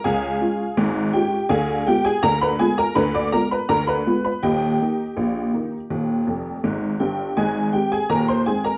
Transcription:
<<
  \new Staff \with { instrumentName = "Honky-tonk piano" } { \time 2/4 \key ees \mixolydian \tempo 4 = 82 <aes' f'' aes''>4. <g' g''>8 | <aes' f'' aes''>8 <g' g''>16 <aes' aes''>16 <bes' bes''>16 <b' b''>16 <aes' aes''>16 <bes' bes''>16 | <b' b''>16 <d'' d'''>16 <bes' bes''>16 <b' b''>16 <bes' bes''>16 <b' b''>8 <b' b''>16 | <g' ees'' g''>2~ |
<g' ees'' g''>4. <g' g''>8 | <aes' ees'' aes''>8 <g' g''>16 <aes' aes''>16 <bes' bes''>16 <c'' c'''>16 <aes' aes''>16 <bes' bes''>16 | }
  \new Staff \with { instrumentName = "Honky-tonk piano" } { \clef bass \time 2/4 \key ees \mixolydian <des, des>8 <aes des' f'>8 <aes,, aes,>8 <aes des' f'>8 | <d, d>8 <aes b f'>8 <d, d>8 <aes b f'>8 | <d, d>8 <aes b f'>8 <d, d>8 <aes b f'>8 | <ees,, ees,>8 <ees bes ees'>8 <bes,, bes,>8 <ees bes ees'>8 |
<ees,, ees,>8 <f,, f,>8 <aes,, aes,>8 <g,, g,>8 | <aes,, aes,>8 <ees aes c'>8 <ees,, ees,>8 <ees aes c'>8 | }
>>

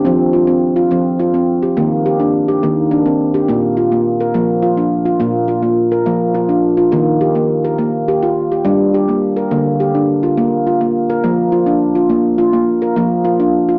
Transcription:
<<
  \new Staff \with { instrumentName = "Handpan" } { \time 6/8 \key bes \major \tempo 4. = 70 c'8 f'16 c'8 f'16 c'8 f'16 c'8 g'16 | bes8 g'16 d'8 g'16 bes8 d'16 c'8 g'16 | bes8 f'16 bes8 bes'16 bes8 f'16 d'8 f'16 | bes8 f'16 bes8 bes'16 bes8 f'16 d'8 f'16 |
bes8 g'16 bes8 bes'16 r8 g'16 f'8 g'16 | d'8 g'16 bes8 bes'16 bes8 g'16 d'8 f'16 | r8 f'16 bes8 bes'16 bes8 f'16 d'8 f'16 | bes8 f'16 bes8 bes'16 bes8 f'16 d'8 f'16 | }
  \new Staff \with { instrumentName = "Handpan" } { \clef bass \time 6/8 \key bes \major f4. f4. | ees4. ees4. | bes,4. f4. | bes,4. f4. |
ees4. bes4. | g4. d4. | bes4. f4. | r4. f4. | }
>>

